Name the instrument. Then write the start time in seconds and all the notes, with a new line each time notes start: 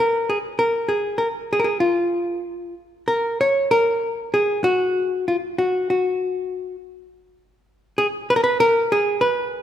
hollow-body jazz guitar
0.00 A#4
0.29 G#4
0.59 A#4
0.89 G#4
1.18 A#4
1.53 G#4
1.60 A#4
1.64 G#4
1.80 F4
3.08 A#4
3.41 C#5
3.71 A#4
4.34 G#4
4.64 F#4
5.28 F4
5.58 F#4
5.90 F#4
7.98 G#4
8.30 B4
8.36 A#4
8.44 B4
8.60 A#4
8.92 G#4
9.21 B4